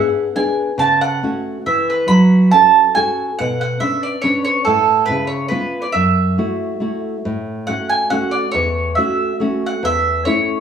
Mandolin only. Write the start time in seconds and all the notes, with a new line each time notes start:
Already playing: F#5
0.36 G#5
0.79 A5
1.01 F#5
1.66 E5
1.90 B4
2.08 B5
2.51 A5
2.95 G#5
3.39 F#5
3.61 F#5
3.80 E5
4.03 D5
4.22 C#5
4.45 C#5
4.65 A4
5.06 B4
5.27 C#5
5.49 B4
5.82 D5
5.92 E5
7.67 F#5
7.89 G#5
8.10 F#5
8.31 D5
8.51 C#5
8.95 E5
9.66 F#5
9.85 E5
10.25 C#5